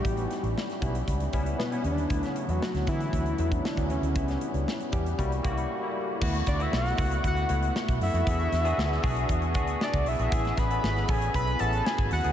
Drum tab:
CC |----------------|----------------|----------------|x---------------|
HH |xxxx-xxxxxxx-xxx|xxxx-xxxxxxx-xxx|xxxx-xxxxxxx----|-xxx-xoxxxxx-xox|
SD |--o-oo------o---|-o--oo------o---|-o--o-----------|----oo------o---|
BD |o-----o-o-o-----|o-----o-o--o-o--|o-----o-o-o-----|o-o---o-o----o--|

CC |----------------|----------------|
HH |xxxx--oxxxxx-xox|xxxx-xoxxxxx-xox|
SD |--o-oo------o---|-oo-oo------o---|
BD |o-----o-o-o--o--|o-o---o-o----o--|